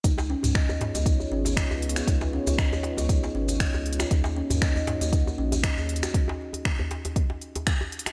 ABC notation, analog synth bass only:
X:1
M:4/4
L:1/16
Q:"Swing 16ths" 1/4=118
K:Dbmix
V:1 name="Analog synth bass" clef=bass
D,,2 z D,,2 z2 D,,2 z A,,,2 z D,,2 z | D,,2 z D,,2 z2 D,,2 z A,,,2 z D,,2 z | E,,2 z E,,2 z2 E,,2 z B,,,2 z E,,2 z | z16 |]